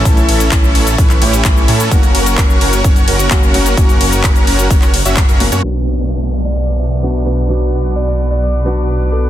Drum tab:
RD |x-x-x-x-x-x-x-x-|x-x-x-x-x-x-x-x-|x-x-x-x-x-x-x-x-|----------------|
HH |xxoxx-oxxxoxx-ox|xxoxx-oxxxoxx-ox|xxoxxxoxxxoxxxox|--o-------o---o-|
SH |xx-xxx-xxx-xxx-x|xx-xxx-xxx-xxx-x|xx-xxx-xxx-xxx-x|----------------|
CP |----x----x--x---|----x-------x---|----x----x--x---|----------------|
BD |o---o---o---o---|o---o---o---o---|o---o---o---o---|----------------|

RD |----------------|
HH |--o---o---o---o-|
SH |-----------x----|
CP |----------------|
BD |----------------|